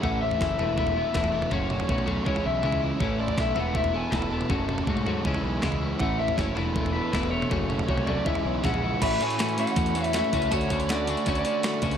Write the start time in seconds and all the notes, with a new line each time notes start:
0.02 A1 A2 E3 A3 C#4 E4 A4 F#5, kick, floor tom
0.21 A3 C#4 E4 A4 E5
0.31 floor tom
0.40 F#1 E3 A3 C#4 E4 A4, kick, snare
0.58 E1 E2 B2 E3 A3 B3 E4 A4, floor tom
0.77 E3 A3 B3 E4 E5, kick
0.87 floor tom
0.96 E3 A3 B3 E4 A4
1.14 E1 E2 B2 E3 A3 B3 E4 A4, kick, snare, mid tom
1.24 floor tom
1.32 E3 A3 B3 E4
1.42 mid tom
1.50 F#1 F#2 C#3 F#3 A3 C#4 F#4 C#5, kick, floor tom
1.69 F#3 A3 C#4 F#4, mid tom
1.80 floor tom
1.88 B1 F#3 A3 C#4 F#4, kick
1.98 mid tom
2.06 F#2 C#3 F#3 A3 C#4 F#4, floor tom
2.11 C#4
2.24 C#2 C#3 E3 G#3 C#4 E4 C#5, kick
2.30 G#4
2.36 floor tom
2.44 B1 G#3 C#4 E4 G#4 E5
2.63 C#2 C#3 E3 G#3 C#4 E4 G#4, mid tom
2.72 floor tom
2.81 G#3 C#4 E4
2.99 A1 A2 E3 A3 C#4 E4 A4 C#5, kick, floor tom
3.18 A3 C#4 E4 A4 D5
3.28 floor tom
3.37 B1 E3 A3 C#4 E4 A4 E5, kick, snare
3.55 E1 E2 B2 E3 A3 B3 E4 A4, floor tom
3.59 F#5
3.74 E3 A3 B3 E4 E5, kick
3.84 floor tom
3.93 E3 A3 B3 E4 A4 G#5
4.10 E1 E2 B2 E3 A3 B3 E4, kick, snare, mid tom
4.16 A4 A5
4.22 floor tom
4.30 E3 A3 B3 E4 A5
4.41 mid tom
4.48 F#1 F#2 C#3 F#3 A3 C#4 F#4, kick, floor tom
4.53 A4
4.68 F#3 A3 C#4 F#4 A4, mid tom
4.78 floor tom
4.87 G#2 F#3 A3 C#4 F#4 A4, kick
4.97 mid tom
5.05 F#2 C#3 F#3 A3 C#4 F#4 A4, floor tom
5.25 C#2 C#3 E3 G#3 C#4 E4 G#4, kick
5.35 floor tom
5.43 B1 G#3 C#4 E4 G#4
5.62 C#2 C#3 E3 G#3 C#4 E4 G#4, kick, snare, mid tom
5.72 floor tom
5.81 G#3 C#4 E4
5.99 A1 A2 E3 A3 C#4 E4 A4 F#5, kick, floor tom
6.19 A3 C#4 E4 A4 E5
6.28 floor tom
6.37 F#1 E3 A3 C#4 E4 A4 C#5, kick, snare
6.55 E1 E2 B2 E3 A3 B3 E4 A4 B4, floor tom
6.75 E3 A3 B3 E4, kick
6.86 floor tom
6.92 E3 A3 B3 E4 A4 B4
7.12 E1 E2 B2 E3 A3 B3 E4 B4, kick, snare, mid tom
7.16 A4
7.23 floor tom
7.30 E3 A3 B3 E4 C#5
7.42 mid tom
7.50 F#1 F#2 C#3 F#3 A3 C#4 F#4, kick, floor tom
7.54 A4
7.69 F#3 A3 C#4 F#4 A4, mid tom
7.79 floor tom
7.87 C2 F#3 A3 C#4 F#4 C#5, kick
7.91 A4
7.98 mid tom
8.06 F#2 C#3 F#3 A3 C#4 F#4 A4 D5, floor tom
8.25 C#2 C#3 E3 G#3 C#4 E4 G#4 E5, kick
8.35 floor tom
8.44 B1 G#3 C#4 E4 G#4
8.63 A#1 C#3 E3 G#3 C#4 E4 G#4 F#5, kick, snare, mid tom
8.74 floor tom
8.82 G#3 C#4 E4
9.01 A1 A2 E3 A3 C#4 F#4 E5 B5, kick, closed hi-hat, crash
9.20 A2 E3 A3 C#4 F#4 G#5, closed hi-hat
9.30 closed hi-hat
9.38 A2 E3 A3 C#4 F#4, snare, closed hi-hat
9.49 closed hi-hat
9.57 A2 E3 A3 C#4 F#4 F#5, closed hi-hat
9.67 closed hi-hat
9.76 E2 A2 E3 A3 C#4 F#4, kick, closed hi-hat
9.86 closed hi-hat
9.94 A2 E3 A3 C#4 F#4, closed hi-hat
10.04 E5, closed hi-hat
10.13 A2 E3 A3 C#4 F#4, snare, closed hi-hat
10.18 E5
10.24 snare
10.33 C#2 A2 E3 A3 C#4 F#4, kick, closed hi-hat
10.42 closed hi-hat
10.51 D2 D3 A3 C#4 D4 F#4 C#5 A5, kick, closed hi-hat
10.61 closed hi-hat
10.70 D2 D3 A3 C#4 D4 F#4, kick, closed hi-hat
10.80 closed hi-hat
10.89 D3 A3 C#4 D4 F#4 D5, snare, closed hi-hat
11.07 D3 A3 C#4 D4 F#4, closed hi-hat
11.17 closed hi-hat
11.26 D2 D3 A3 C#4 D4 F#4 D5, kick, closed hi-hat
11.35 closed hi-hat
11.45 D3 A3 C#4 D4 F#4, closed hi-hat
11.63 D3 A3 C#4 D4 F#4, snare, closed hi-hat
11.74 snare
11.82 C#2 D3 A3 C#4 D4 F#4, kick, closed hi-hat
11.91 closed hi-hat